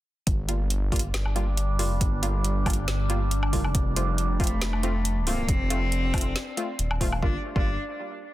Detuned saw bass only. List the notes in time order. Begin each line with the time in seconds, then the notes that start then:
0.27 G1
1.14 G1
1.74 F#1
2.01 G1
2.88 G1
3.48 F#1
3.75 F1
4.62 F1
5.49 F1
6.79 D#1
7.23 G1
7.56 G1